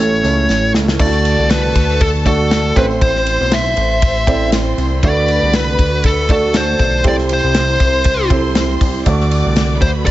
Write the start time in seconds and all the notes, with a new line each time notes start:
Already playing: A3 C#5
0.00 A1 A2 C#4 E4 A4
0.13 tambourine
0.23 C#2 A3 C#4 E4 A4, closed hi-hat, tambourine
0.49 A1, snare, tambourine
0.74 C#2, snare, tambourine
0.88 snare, tambourine
0.99 D2 D3 A3 D4 E4 A4 D5 A5, kick, crash, tambourine
1.06 F#4
1.25 ride, tambourine
1.39 C2, tambourine
1.49 B4, snare, ride, tambourine
1.75 D2, kick, ride, tambourine
2.01 A4, kick, ride, tambourine
2.25 A3 D4 F#4 A4 D5, kick, ride, tambourine
2.51 snare, ride, tambourine
2.75 A1 A2 C4 E4 A4 B4 C5 C6, kick, ride, tambourine
2.91 tambourine
3.01 A1 C5, kick, ride, tambourine
3.15 snare
3.26 ride, tambourine
3.41 B1
3.52 E5, snare, ride, tambourine
3.77 A1, ride, tambourine
4.02 kick, ride, tambourine
4.17 tambourine
4.27 C4 E4 A4 C5 D5, kick, ride, tambourine
4.52 snare, ride, tambourine
4.78 C2, ride, tambourine
5.03 D2 D3 A3 D4 F#4 A4 B4 D5 B5, kick, ride, tambourine
5.28 ride, tambourine
5.42 C2
5.53 B4, snare, ride, tambourine
5.78 D2, kick, ride, tambourine
6.04 A4, kick, ride, tambourine
6.29 A3 D4 F#4 A4 D5 A5, kick, ride, tambourine
6.54 C5, snare, ride, tambourine
6.79 B1, kick, ride, tambourine
7.03 C2 C3 C4 E4 G4 A4 C5 C6, kick, ride, tambourine
7.08 D5
7.18 snare
7.29 ride, tambourine
7.33 C5
7.44 C2, tambourine
7.54 snare, ride, tambourine
7.79 C2, kick, ride, tambourine
8.04 kick, ride, tambourine
8.30 C4 E4 G4 A4 C5, kick, ride, tambourine
8.55 snare, ride, tambourine
8.81 C2, kick, open hi-hat, ride, tambourine
9.06 D2 D3 A3 D4 F#4 A4 D5 D6, kick, hi-hat pedal, ride, tambourine
9.20 snare
9.31 ride, tambourine
9.46 C2
9.56 snare, ride, tambourine
9.81 D2 B4 C5 B5, kick, ride, tambourine
10.06 D5, kick, ride, tambourine